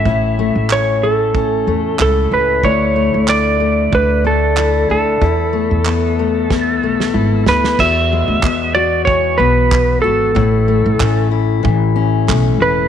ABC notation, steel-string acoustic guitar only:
X:1
M:4/4
L:1/8
Q:"Swing 16ths" 1/4=93
K:A
V:1 name="Steel-string acoustic guitar"
[A,,A,CE] A, C A, C A, E C | [D,E] A, D A, D A, E D | [E,,E] A, B, A, B, A, E B, | [E,,F] G, B, F E, B,2 F |
[A,,E] A, C E E, C A, E |]